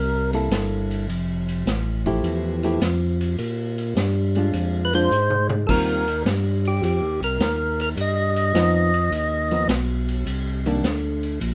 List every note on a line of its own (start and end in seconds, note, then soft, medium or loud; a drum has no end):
0.00 0.49 C2 medium
0.00 0.31 A#4 medium
0.33 1.06 A#3 soft
0.33 1.06 E4 medium
0.33 1.06 A4 medium
0.33 ride soft
0.51 1.07 G1 medium
0.51 snare medium
0.51 hi-hat pedal medium
0.51 ride medium
0.91 ride soft
1.08 1.64 F1 medium
1.08 ride medium
1.49 ride soft
1.66 2.22 A1 medium
1.66 snare medium
1.66 hi-hat pedal medium
1.66 ride medium
2.06 2.60 F3 medium
2.06 2.60 A3 medium
2.06 2.60 E4 medium
2.06 2.60 G4 medium
2.06 kick soft
2.06 ride soft
2.23 2.79 E2 medium
2.23 ride medium
2.63 2.80 F3 medium
2.63 2.80 A3 medium
2.63 2.80 E4 medium
2.63 2.80 G4 medium
2.63 ride soft
2.81 3.37 F2 medium
2.81 snare medium
2.81 hi-hat pedal medium
2.81 ride medium
3.21 ride soft
3.39 3.94 A#2 medium
3.39 ride medium
3.78 ride soft
3.96 4.52 G2 medium
3.96 snare medium
3.96 hi-hat pedal medium
3.96 ride medium
4.35 4.89 G#3 medium
4.35 4.90 D4 medium
4.35 4.90 F4 medium
4.35 ride soft
4.53 5.09 F2 medium
4.53 ride medium
4.85 4.94 B4 medium
4.93 5.10 G#3 medium
4.93 5.10 D4 medium
4.93 5.10 F4 medium
4.93 5.47 C5 loud
4.93 ride soft
5.11 5.66 G#2 medium
5.11 hi-hat pedal medium
5.30 high tom medium
5.49 high tom medium
5.67 6.24 D#2 medium
5.67 6.04 D#3 soft
5.67 6.04 G3 soft
5.67 6.04 C4 soft
5.67 6.05 F4 soft
5.67 5.70 A4 medium
5.67 6.23 A#4 loud
5.67 kick medium
5.67 crash medium
6.08 ride soft
6.25 6.81 G2 loud
6.25 snare medium
6.25 hi-hat pedal medium
6.25 ride medium
6.65 6.83 G4 medium
6.65 ride soft
6.82 7.01 F2 medium
6.82 7.21 G4 medium
6.82 ride medium
7.02 7.21 D#2 soft
7.20 7.39 C2 medium
7.20 7.80 A#4 medium
7.20 ride soft
7.39 7.96 D#2 medium
7.39 snare medium
7.39 hi-hat pedal medium
7.39 ride medium
7.80 7.89 A#4 medium
7.80 ride soft
7.97 8.53 G2 medium
7.97 ride medium
8.01 9.68 D#5 loud
8.36 ride soft
8.54 9.10 F2 medium
8.54 8.90 F3 medium
8.54 8.91 B3 medium
8.54 8.91 D#4 medium
8.54 snare medium
8.54 hi-hat pedal medium
8.54 ride medium
8.94 ride soft
9.11 9.67 D#2 medium
9.11 ride medium
9.51 9.68 F3 medium
9.51 9.68 B3 medium
9.51 9.69 D#4 medium
9.51 ride soft
9.68 10.25 B1 medium
9.68 snare medium
9.68 hi-hat pedal soft
9.68 ride medium
10.09 ride soft
10.26 10.82 C2 medium
10.26 ride medium
10.66 10.83 D#3 medium
10.66 10.83 A#3 medium
10.66 10.83 D4 medium
10.66 ride soft
10.84 11.40 D2 medium
10.84 snare medium
10.84 hi-hat pedal medium
10.84 ride medium
11.23 ride soft
11.41 11.54 A#1 medium
11.41 ride medium